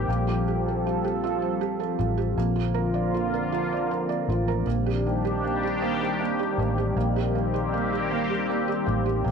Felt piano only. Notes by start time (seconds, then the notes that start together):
0.09 A#3
0.28 F4
0.48 G4
0.68 A4
0.87 F4
1.04 G4
1.24 F4
1.42 C5
1.61 G4
1.80 A4
1.99 F4
2.18 G4
2.38 A#3
2.56 F4
2.74 A#4
2.94 D5
3.14 F4
3.34 A#4
3.52 F4
3.72 D5
3.91 A#4
4.09 D5
4.30 F4
4.48 A#4
4.67 A#3
4.86 G4
5.06 A#3
5.25 G4
5.44 A#3
5.63 G4
5.82 A#3
6.02 G4
6.21 A#3
6.39 G4
6.59 A#3
6.78 G4
6.97 A#3
7.16 G4
7.35 A#3
7.54 G4
7.74 A#3
7.93 G4
8.11 A#3
8.30 G4
8.50 A#3
8.68 G4
8.86 A#3
9.06 G4
9.24 A#3